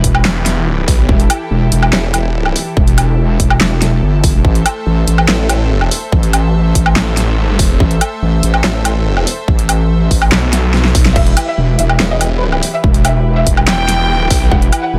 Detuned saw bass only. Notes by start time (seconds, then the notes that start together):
0.25 E1
0.88 B1
1.93 E1
5.28 A1
6.96 A1
7.39 G#1
7.59 E1
8.64 A1
10.32 B1
12.00 E1
13.68 E1
14.11 D#1
14.31 B1